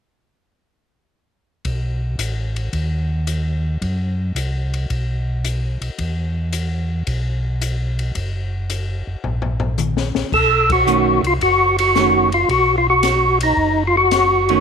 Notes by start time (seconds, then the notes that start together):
1.65 B1, kick, ride
2.18 A1, hi-hat pedal, ride
2.56 ride
2.73 D#2, kick, ride
3.27 hi-hat pedal, ride
3.81 F#2, kick, ride
4.35 C2, hi-hat pedal, ride
4.74 ride
4.90 B1, kick, ride
5.45 hi-hat pedal, ride
5.81 B1, ride
5.98 E2, kick, ride
6.53 hi-hat pedal, ride
7.07 B1, kick, ride
7.62 hi-hat pedal, ride
7.99 ride
8.15 F#1, kick, ride
8.70 hi-hat pedal, ride
9.07 F#1
9.24 A#1, floor tom
9.42 floor tom
9.60 floor tom
9.78 hi-hat pedal, mid tom
9.97 snare
10.15 A#1, snare
10.32 B1 A4, kick, crash
10.70 F#4, kick, ride
10.86 D#3 A3 C#4, hi-hat pedal
11.23 C2, ride
11.27 F4
11.41 F#1 F#4, kick, ride
11.79 F#4, ride
11.95 D#3 A3 C#4, snare, hi-hat pedal
12.32 F4, ride
12.49 B1 F#4, kick, ride
12.78 F4
12.90 F#4
13.03 snare, hi-hat pedal, ride
13.41 D#4, ride
13.57 F#1, kick
13.87 F4
13.97 F#4
14.11 snare, hi-hat pedal, ride
14.49 D#3 A3 C#4, ride